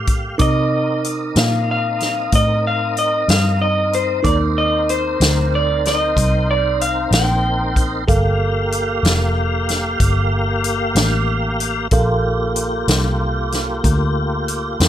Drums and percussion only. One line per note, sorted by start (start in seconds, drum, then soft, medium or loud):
0.07 kick medium
0.07 closed hi-hat medium
0.39 kick medium
0.39 closed hi-hat medium
1.04 closed hi-hat medium
1.36 snare medium
1.36 closed hi-hat medium
2.00 snare soft
2.00 closed hi-hat soft
2.32 kick medium
2.32 closed hi-hat medium
2.97 closed hi-hat medium
3.29 snare medium
3.29 closed hi-hat medium
3.93 closed hi-hat soft
4.25 kick medium
4.25 closed hi-hat medium
4.89 closed hi-hat medium
5.21 snare medium
5.21 closed hi-hat medium
5.85 snare soft
5.85 closed hi-hat medium
6.17 kick medium
6.17 closed hi-hat medium
6.81 closed hi-hat medium
7.12 snare loud
7.12 closed hi-hat medium
7.76 kick medium
7.76 closed hi-hat medium
8.08 kick medium
8.08 closed hi-hat medium
8.72 closed hi-hat medium
9.05 snare loud
9.05 closed hi-hat medium
9.69 snare soft
9.69 closed hi-hat soft
10.00 kick medium
10.00 closed hi-hat medium
10.64 closed hi-hat medium
10.96 snare loud
10.96 closed hi-hat medium
11.60 closed hi-hat medium
11.91 kick medium
11.91 closed hi-hat medium
12.56 closed hi-hat medium
12.88 snare medium
12.88 closed hi-hat medium
13.52 snare soft
13.52 closed hi-hat medium
13.84 kick medium
13.84 closed hi-hat medium
14.48 closed hi-hat medium
14.80 snare loud
14.80 closed hi-hat medium